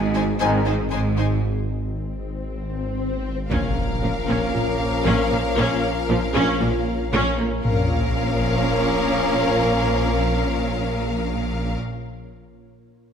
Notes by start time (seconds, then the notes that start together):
Already playing: G#1 G#2 C4 D#4 G#4 D#5
0.15 G#3 D#4 C5 G#5
0.40 G#1 G#2 D#3 G#3 C4 D#4 C5 G#5
0.66 D#4 C5 G#5
0.91 G#1 G#2 G#3 D#4 C5 G#5
1.17 D#4 C5 G#5
1.45 swell
3.50 A#1 A#2 F3 A#3 C#4 F4 A#4 C#5 F5, impact
4.01 A#1 A#2 F3 C#4
4.28 A#1 A#2 A#3 C#4
4.54 A#1 A#2 A#3 F4
5.05 A#1 A#2 A#3 C#4
5.31 A#1 A#2 A#3 A#4
5.57 A#1 A#2 A#3 C#4
6.09 A#1 A#2 F3 C#4
6.34 A#1 A#2 A#3 C#4
6.60 A#1 A#2 A#3 F4
7.13 A#1 A#2 A#3 C#4
7.38 A#1 A#2 A#3 A#4
7.63 A#1 A#2 F3 A#3 C#4 F4 A#4 C#5 F5, sub drop